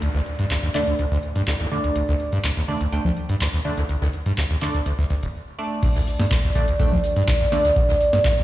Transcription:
0.00 0.09 D2 medium
0.00 5.30 A3 medium
0.00 5.30 D4 medium
0.00 5.30 D5 medium
0.00 closed hi-hat medium
0.00 downlifter medium
0.15 0.21 D2 medium
0.15 snare soft
0.25 closed hi-hat medium
0.25 closed hi-hat soft
0.39 0.45 G2 medium
0.39 closed hi-hat soft
0.50 0.57 D2 medium
0.50 clap loud
0.50 closed hi-hat medium
0.63 0.69 D#2 medium
0.75 0.82 D3 medium
0.75 0.92 A3 loud
0.75 0.92 D4 medium
0.75 0.92 D5 loud
0.75 clap medium
0.87 0.94 D2 medium
0.87 closed hi-hat soft
0.99 1.06 D2 medium
0.99 closed hi-hat medium
1.11 1.18 D2 loud
1.23 closed hi-hat soft
1.23 closed hi-hat medium
1.36 1.42 G2 loud
1.36 closed hi-hat medium
1.47 1.54 D2 medium
1.47 snare medium
1.47 clap loud
1.47 closed hi-hat medium
1.53 snare medium
1.53 closed hi-hat medium
1.60 1.66 D#2 medium
1.60 snare medium
1.60 closed hi-hat medium
1.65 snare medium
1.65 closed hi-hat medium
1.71 1.78 D3 medium
1.71 2.65 A3 medium
1.71 2.65 D4 medium
1.71 2.65 D5 medium
1.71 closed hi-hat medium
1.84 1.90 D2 medium
1.84 closed hi-hat soft
1.96 2.03 D2 medium
1.96 closed hi-hat medium
2.08 2.15 D2 loud
2.08 snare soft
2.20 closed hi-hat soft
2.20 closed hi-hat medium
2.32 2.39 G2 medium
2.32 closed hi-hat soft
2.44 2.51 D2 medium
2.44 clap loud
2.44 closed hi-hat medium
2.57 2.63 D#2 medium
2.68 2.75 D3 medium
2.68 2.79 A3 medium
2.68 2.79 D4 medium
2.68 2.79 D5 medium
2.68 closed hi-hat medium
2.81 2.87 D2 medium
2.81 closed hi-hat soft
2.92 2.99 D2 medium
2.92 3.03 A3 medium
2.92 3.03 D4 medium
2.92 3.03 G5 loud
2.92 closed hi-hat medium
3.05 3.11 D2 loud
3.05 low conga medium
3.16 closed hi-hat medium
3.16 closed hi-hat soft
3.29 3.36 G2 loud
3.29 closed hi-hat medium
3.41 3.48 D2 medium
3.41 clap loud
3.41 closed hi-hat medium
3.53 3.60 D#2 medium
3.53 closed hi-hat medium
3.65 3.72 D3 medium
3.65 3.76 A3 medium
3.65 3.76 D4 medium
3.65 3.76 D5 loud
3.65 closed hi-hat medium
3.77 3.84 D2 medium
3.77 snare medium
3.77 closed hi-hat soft
3.89 3.96 D2 medium
3.89 closed hi-hat medium
4.01 4.08 D2 loud
4.01 snare soft
4.13 closed hi-hat medium
4.13 closed hi-hat soft
4.26 4.32 G2 medium
4.26 closed hi-hat soft
4.37 4.44 D2 medium
4.37 clap loud
4.37 closed hi-hat medium
4.50 4.57 D#2 medium
4.61 4.69 D3 medium
4.61 4.79 A3 loud
4.61 4.79 D4 medium
4.61 4.79 D5 loud
4.61 clap medium
4.61 closed hi-hat medium
4.74 4.81 D2 medium
4.74 closed hi-hat soft
4.86 4.93 D2 medium
4.86 closed hi-hat medium
4.99 5.05 D2 loud
5.09 5.14 D2 loud
5.09 closed hi-hat medium
5.09 closed hi-hat soft
5.23 5.27 D1 medium
5.23 closed hi-hat soft
5.59 6.07 A3 medium
5.59 6.07 D4 medium
5.59 6.07 D5 medium
5.83 5.90 D2 medium
5.83 8.44 A3 medium
5.83 8.44 D4 medium
5.83 8.44 D5 medium
5.83 kick loud
5.83 closed hi-hat medium
5.83 crash loud
5.95 6.02 D2 loud
5.95 snare soft
6.07 closed hi-hat medium
6.07 open hi-hat loud
6.19 6.26 G2 loud
6.19 snare medium
6.19 closed hi-hat medium
6.30 6.38 D2 medium
6.30 kick loud
6.30 snare loud
6.30 clap loud
6.30 closed hi-hat medium
6.44 6.50 D#2 medium
6.44 closed hi-hat soft
6.55 6.62 D3 medium
6.55 6.66 A3 medium
6.55 6.66 D4 medium
6.55 6.66 D5 medium
6.55 kick medium
6.55 closed hi-hat medium
6.55 open hi-hat loud
6.68 6.74 D2 medium
6.68 closed hi-hat medium
6.79 6.86 D2 medium
6.79 6.90 A3 loud
6.79 6.90 D4 medium
6.79 6.90 G5 loud
6.79 kick loud
6.79 closed hi-hat medium
6.92 6.98 D2 loud
6.92 low conga medium
7.04 closed hi-hat medium
7.04 open hi-hat loud
7.16 7.23 G2 loud
7.16 closed hi-hat medium
7.28 7.35 D2 medium
7.28 kick loud
7.28 snare loud
7.28 clap loud
7.28 closed hi-hat medium
7.40 7.47 D#2 medium
7.40 closed hi-hat medium
7.52 7.59 D3 medium
7.52 7.63 A3 medium
7.52 7.63 D4 medium
7.52 7.63 D5 loud
7.52 snare medium
7.52 closed hi-hat medium
7.52 open hi-hat loud
7.64 7.71 D2 medium
7.64 snare medium
7.64 closed hi-hat medium
7.76 7.83 D2 medium
7.76 kick loud
7.76 closed hi-hat medium
7.89 7.95 D2 loud
7.89 snare medium
8.00 closed hi-hat medium
8.00 open hi-hat loud
8.13 8.19 G2 loud
8.13 snare medium
8.13 closed hi-hat medium
8.24 8.32 D2 medium
8.24 kick loud
8.24 snare loud
8.24 clap loud
8.24 closed hi-hat medium
8.37 8.44 D#2 medium
8.37 closed hi-hat soft

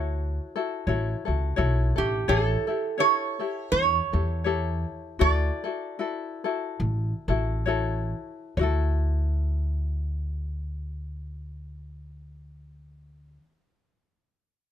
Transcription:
0.00 0.37 D2 medium
0.00 0.56 E4 medium
0.00 0.56 F#4 medium
0.00 1.54 F#4 medium
0.00 0.55 A4 medium
0.00 0.86 C#5 medium
0.56 0.87 E4 medium
0.56 0.86 F#4 medium
0.56 0.87 A4 medium
0.87 1.13 A1 medium
0.87 1.25 E4 medium
0.87 1.26 F#4 medium
0.87 1.24 A4 medium
0.87 1.27 C#5 medium
1.25 1.55 C#2 medium
1.25 1.56 E4 soft
1.25 1.56 F#4 soft
1.25 1.57 A4 medium
1.56 1.94 B1 medium
1.56 1.96 E4 medium
1.56 1.97 F#4 medium
1.56 1.95 A4 medium
1.56 1.97 C#5 medium
1.96 2.25 A1 medium
1.96 2.28 E4 medium
1.96 2.29 G4 medium
1.96 2.27 A4 medium
2.28 2.54 A1 medium
2.28 2.66 E4 medium
2.28 2.68 G4 medium
2.28 3.02 A4 medium
2.28 2.66 A4 medium
2.28 2.68 C#5 medium
2.67 2.98 E4 soft
2.67 2.97 G4 soft
2.67 2.99 A4 medium
2.98 3.39 E4 medium
2.98 3.39 G4 medium
2.98 3.38 A4 medium
2.98 3.39 C#5 medium
2.98 3.70 C#5 medium
3.39 4.13 E4 soft
3.39 4.13 G4 soft
3.39 4.12 A4 medium
3.72 3.98 E2 medium
3.72 5.21 C#5 medium
4.13 4.83 E2 medium
4.13 4.45 E4 soft
4.13 4.44 G4 soft
4.13 4.45 A4 soft
4.44 5.19 E4 medium
4.44 5.19 G4 medium
4.44 5.20 A4 medium
4.44 7.65 C#5 medium
5.19 5.49 D2 medium
5.19 5.64 E4 medium
5.19 5.63 F#4 medium
5.19 5.63 A4 medium
5.19 7.63 D5 medium
5.64 5.98 E4 medium
5.64 5.98 F#4 soft
5.64 5.98 A4 medium
5.99 6.44 E4 medium
5.99 6.44 F#4 medium
5.99 6.43 A4 medium
6.44 7.29 E4 medium
6.44 7.30 F#4 soft
6.44 7.28 A4 medium
6.80 7.11 A1 medium
7.28 8.12 A1 medium
7.28 7.66 E4 medium
7.28 7.66 F#4 soft
7.28 7.66 A4 medium
7.66 8.57 E4 medium
7.66 8.59 F#4 medium
7.66 8.62 A4 medium
7.66 8.57 C#5 medium
8.57 13.36 D2 medium
8.57 13.44 E4 medium
8.57 13.43 F#4 medium
8.57 8.60 C#5 medium
8.63 13.46 A4 medium

